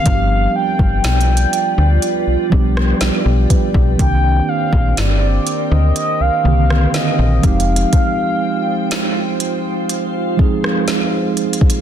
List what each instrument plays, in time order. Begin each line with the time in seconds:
Already playing: soft synth lead F5
0.04 fm bass G1, tine electric piano F3 G3 B3 D4, ambient pad F4 B4 D5 G5, kick, closed hi-hat
0.08 tine electric piano F#4
0.15 tine electric piano G4
0.56 soft synth lead G5
0.79 fm bass G1, soft synth lead G5, kick
1.04 fm bass B1, snare, closed hi-hat
1.21 closed hi-hat
1.37 closed hi-hat
1.53 closed hi-hat
1.78 fm bass D2
2.02 closed hi-hat
2.27 fm bass B1
2.50 fm bass B1, tine electric piano F3 G3 B3 D4, kick
2.54 tine electric piano G4
2.77 cross-stick
3.01 fm bass B1, snare, closed hi-hat
3.26 fm bass B1, tine electric piano G4
3.50 tine electric piano G4 B4, kick, closed hi-hat
3.74 fm bass B1, tine electric piano G4, kick
3.97 fm bass C2, tine electric piano D#3 A#3 C4 D4, ambient pad C4 A#4 C5, soft synth lead G5, kick, closed hi-hat
4.02 tine electric piano G4
4.48 soft synth lead F5
4.73 fm bass A#1, kick
4.97 fm bass G1, soft synth lead D5, snare, closed hi-hat
5.47 closed hi-hat
5.71 fm bass D2, soft synth lead D#5
5.96 soft synth lead D#5, closed hi-hat
6.20 fm bass C2, soft synth lead F5
6.43 fm bass C2, tine electric piano D3 D#3 A#3 C4
6.48 tine electric piano G4
6.70 cross-stick
6.94 soft synth lead D#5, celesta F5, snare, closed hi-hat
7.19 fm bass A#1
7.42 fm bass F1, tine electric piano F3 G#3 C4 D#4, ambient pad G#3 F4 C5 G5, soft synth lead F5, kick, closed hi-hat
7.46 tine electric piano G4
7.60 closed hi-hat
7.76 closed hi-hat
7.93 kick, closed hi-hat
8.91 snare, closed hi-hat
9.40 ambient pad F5, closed hi-hat
9.89 closed hi-hat
10.37 tine electric piano F3 G#3 C4 D#4, kick
10.41 tine electric piano G#4
10.64 cross-stick
10.88 snare, closed hi-hat
11.37 closed hi-hat
11.53 closed hi-hat
11.61 kick
11.70 closed hi-hat